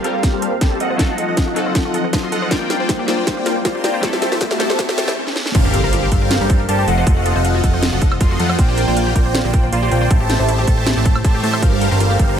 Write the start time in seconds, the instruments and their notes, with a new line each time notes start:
Already playing: synth keys G3 A#3 C4 F4 A4, ambient pad G3 A#3 C4 F4 A5, riser
0.02 synth keys G3 A#3 C4 F4 A#4, analog polysynth G3 G4 A4 A#4 C5 F5, synth arpeggio sound A4, closed hi-hat
0.14 synth arpeggio sound A#4
0.23 synth arpeggio sound F4, kick, snare, closed hi-hat
0.33 analog polysynth G3 G4 A4 A#4 C5 F5, synth arpeggio sound G4
0.42 synth arpeggio sound A4, closed hi-hat
0.52 synth arpeggio sound A#4
0.61 analog polysynth G3 G4 A4 A#4 C5 A5, synth arpeggio sound F4, kick, snare, closed hi-hat
0.71 synth arpeggio sound G4
0.80 analog polysynth F3 F4 A4 D#5 F#5, ambient pad F#3 D#4, synth arpeggio sound A4, closed hi-hat
0.90 synth arpeggio sound C5
0.97 analog polysynth F3 F4 A4 D#5 F#5, synth keys F#3 C4 D#4 F4 A4, synth arpeggio sound F4, kick, snare, closed hi-hat
1.09 synth arpeggio sound F#4
1.18 synth arpeggio sound A4, closed hi-hat
1.28 analog polysynth F3 F4 A4 D#5 F#5, synth arpeggio sound C5
1.37 synth arpeggio sound F4, kick, snare, closed hi-hat
1.47 synth arpeggio sound F#4
1.54 analog polysynth F3 F4 A4 D#5 F#5, synth keys F#3 C4 D#4 F4 A4, synth arpeggio sound A4, closed hi-hat
1.66 synth arpeggio sound C5
1.75 synth arpeggio sound F4, kick, snare, closed hi-hat
1.85 analog polysynth F3 F4 A4 D#5 F#5, synth arpeggio sound F#4
1.94 synth arpeggio sound A4, closed hi-hat
2.04 synth arpeggio sound C5
2.13 analog polysynth F3 F4 A4 D#5 C6, synth arpeggio sound F4, kick, snare, closed hi-hat
2.23 synth arpeggio sound F#4
2.32 analog polysynth F3 F4 A4 D#5 F#5, synth arpeggio sound A4, closed hi-hat
2.42 synth arpeggio sound C5
2.49 synth keys G3 C4 D4 F4 A#4, ambient pad G3 D4 A#4, analog polysynth A#3 F4 C5 D5 G5, synth arpeggio sound F4, kick, snare, closed hi-hat
2.61 synth arpeggio sound G4
2.70 synth arpeggio sound A#4, snare, closed hi-hat
2.80 analog polysynth A#3 F4 C5 D5 G5, synth arpeggio sound C5
2.89 synth arpeggio sound F4, kick, snare, closed hi-hat
2.99 synth arpeggio sound G4
3.06 synth keys G3 C4 D4 F4, analog polysynth A#3 F4 C5 D5 G5, synth arpeggio sound A#4, snare, closed hi-hat
3.10 synth keys C5
3.18 synth arpeggio sound C5
3.27 synth arpeggio sound F4, kick, snare, closed hi-hat
3.37 analog polysynth A#3 F4 C5 D5 G5, synth arpeggio sound G4
3.46 synth arpeggio sound A#4, snare, closed hi-hat
3.56 synth arpeggio sound C5
3.65 analog polysynth A#3 F4 C5 D5 C6, synth arpeggio sound F4, kick, snare, closed hi-hat
3.75 synth arpeggio sound G4
3.84 analog polysynth A#3 F4 C5 D5 G5, synth arpeggio sound A#4, snare, closed hi-hat
3.94 synth arpeggio sound C5
4.01 synth keys G3 A3 C4 E4 A4, ambient pad A3 E4 A4, analog polysynth A3 G4 C5 E5 A5, synth arpeggio sound E4, kick, snare, closed hi-hat
4.13 synth arpeggio sound G4, snare
4.22 synth arpeggio sound A4, snare, closed hi-hat
4.32 analog polysynth A3 G4 C5 E5 A5, synth arpeggio sound C5, snare
4.41 synth arpeggio sound E4, kick, snare, closed hi-hat
4.51 synth arpeggio sound G4, snare
4.58 synth keys G3 A3 C4 E4 A4, analog polysynth A3 G4 C5 E5 A5, synth arpeggio sound A4, snare, closed hi-hat
4.70 synth arpeggio sound C5, snare
4.79 synth arpeggio sound E4, kick, snare, closed hi-hat
4.89 analog polysynth A3 G4 C5 E5 A5, synth arpeggio sound G4, snare
4.98 synth arpeggio sound A4, snare, closed hi-hat
5.08 synth arpeggio sound E4, snare
5.27 snare
5.36 snare
5.46 snare
5.55 analog synth bass G1, ambient pad F3 A3 A#3 C4 G4, analog polysynth G3 G4 A4 A#4 C5 F5, synth arpeggio sound F4, digital synth lead F5, kick, closed hi-hat, crash, impact
5.65 synth arpeggio sound G4
5.74 synth arpeggio sound A4, closed hi-hat
5.84 analog synth bass G1, analog polysynth G3 G4 A4 A#4 C5 F5, synth arpeggio sound A#4, digital synth lead F5
5.93 synth arpeggio sound F4, closed hi-hat
6.03 synth arpeggio sound G4
6.12 analog synth bass G1, analog polysynth G3 G4 A4 A#4 C5 F5, synth arpeggio sound A4, digital synth lead F5, kick, closed hi-hat
6.22 synth arpeggio sound A#4
6.31 synth arpeggio sound F4, snare, closed hi-hat
6.41 analog synth bass G2, analog polysynth G3 G4 A4 A#4 C5 F5, synth arpeggio sound G4, digital synth lead F5
6.50 synth arpeggio sound A4, kick, closed hi-hat
6.60 synth arpeggio sound A#4
6.69 analog synth bass G2, analog polysynth G3 G4 A4 A#4 C5 A5, synth arpeggio sound F4, digital synth lead A5, closed hi-hat
6.79 synth arpeggio sound G4
6.88 analog synth bass F1, ambient pad D#3 F#3 F4, analog polysynth F3 F4 A4 D#5 F#5, synth arpeggio sound A4, digital synth lead F#5, closed hi-hat
6.98 synth arpeggio sound C5
7.07 analog synth bass F1, analog polysynth F3 F4 A4 D#5 F#5, synth arpeggio sound F4, digital synth lead F#5, kick, closed hi-hat
7.17 synth arpeggio sound F#4
7.26 synth arpeggio sound A4, closed hi-hat
7.36 analog synth bass F1, analog polysynth F3 F4 A4 D#5 F#5, synth arpeggio sound C5, digital synth lead F#5
7.45 synth arpeggio sound F4, closed hi-hat
7.55 synth arpeggio sound F#4
7.64 analog synth bass F1, analog polysynth F3 F4 A4 D#5 F#5, synth arpeggio sound A4, digital synth lead F#5, kick, closed hi-hat
7.74 synth arpeggio sound C5
7.83 synth arpeggio sound F4, snare, closed hi-hat
7.93 analog synth bass F1, analog polysynth F3 F4 A4 D#5 F#5, synth arpeggio sound F#4, digital synth lead F#5
8.02 synth arpeggio sound A4, kick, closed hi-hat
8.12 synth arpeggio sound C5, high woodblock
8.21 analog synth bass F1, analog polysynth F3 F4 A4 D#5 C6, synth arpeggio sound F4, digital synth lead C6, kick, closed hi-hat
8.31 synth arpeggio sound F#4
8.40 analog synth bass F2, analog polysynth F3 F4 A4 D#5 F#5, synth arpeggio sound A4, digital synth lead F#5, closed hi-hat
8.50 synth arpeggio sound C5, high woodblock
8.59 analog synth bass A#1, ambient pad D3 G3 A#3, analog polysynth A#3 F4 C5 D5 G5, synth arpeggio sound F4, digital synth lead G5, kick, closed hi-hat
8.69 synth arpeggio sound G4
8.78 synth arpeggio sound A#4, closed hi-hat
8.88 analog synth bass A#1, analog polysynth A#3 F4 C5 D5 G5, synth arpeggio sound C5, digital synth lead G5
8.97 synth arpeggio sound F4, closed hi-hat
9.07 synth arpeggio sound G4
9.16 analog synth bass A#1, analog polysynth A#3 F4 C5 D5 G5, synth arpeggio sound A#4, digital synth lead G5, kick, closed hi-hat
9.26 synth arpeggio sound C5
9.35 synth arpeggio sound F4, snare, closed hi-hat
9.45 analog synth bass A#1, analog polysynth A#3 F4 C5 D5 G5, synth arpeggio sound G4, digital synth lead G5
9.54 synth arpeggio sound A#4, kick, closed hi-hat
9.64 synth arpeggio sound C5
9.72 analog synth bass A#1, analog polysynth A#3 F4 C5 D5 C6, synth arpeggio sound F4, digital synth lead C6, closed hi-hat
9.83 synth arpeggio sound G4
9.91 analog synth bass A#1, analog polysynth A#3 F4 C5 D5 G5, synth arpeggio sound A#4, digital synth lead G5, closed hi-hat
10.02 synth arpeggio sound C5
10.10 analog synth bass A1, ambient pad E3 A3 G4, analog polysynth A3 G4 C5 E5 A5, synth arpeggio sound E4, digital synth lead A5, kick, closed hi-hat
10.20 synth arpeggio sound G4
10.29 synth arpeggio sound A4, snare, closed hi-hat
10.39 analog synth bass A1, analog polysynth A3 G4 C5 E5 A5, synth arpeggio sound C5, digital synth lead A5
10.48 synth arpeggio sound E4, closed hi-hat
10.58 synth arpeggio sound G4
10.67 analog synth bass A1, analog polysynth A3 G4 C5 E5 A5, synth arpeggio sound A4, digital synth lead A5, kick, closed hi-hat
10.78 synth arpeggio sound C5
10.87 synth arpeggio sound E4, snare, closed hi-hat
10.97 analog synth bass A1, analog polysynth A3 G4 C5 E5 A5, synth arpeggio sound G4, digital synth lead A5
11.05 synth arpeggio sound A4, kick, closed hi-hat
11.15 synth arpeggio sound C5, high woodblock
11.24 analog synth bass A2, analog polysynth A3 G4 C5 E5 A5, synth arpeggio sound E4, digital synth lead A5, kick, closed hi-hat
11.34 synth arpeggio sound G4
11.43 analog synth bass A2, analog polysynth A3 G4 C5 E5 A5, synth arpeggio sound A4, digital synth lead A5, open hi-hat
11.53 synth arpeggio sound C5, high woodblock
11.62 analog synth bass G1, ambient pad F3 A#3 C4, analog polysynth G3 G4 A4 A#4 C5 F5, synth arpeggio sound F4, digital synth lead F5, kick, closed hi-hat
11.72 synth arpeggio sound G4
11.81 synth arpeggio sound A4, closed hi-hat
11.91 analog synth bass G1, analog polysynth G3 G4 A4 A#4 C5 F5, synth arpeggio sound A#4, digital synth lead F5
12.00 synth arpeggio sound F4, closed hi-hat
12.10 synth arpeggio sound G4
12.19 analog synth bass G1, analog polysynth G3 G4 A4 A#4 C5 F5, synth arpeggio sound A4, digital synth lead F5, kick, closed hi-hat
12.29 synth arpeggio sound A#4